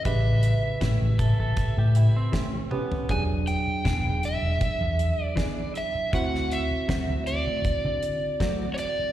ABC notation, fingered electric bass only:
X:1
M:4/4
L:1/16
Q:"Swing 16ths" 1/4=79
K:Edor
V:1 name="Fingered electric bass" clef=bass
A,,,3 z A,,, A,,,2 A,,, z A,,2 z4 z | E,,,3 z E,,, E,,,2 E,,, z E,,2 z4 z | D,,3 z D,, D,,2 D,, z D,2 z4 z |]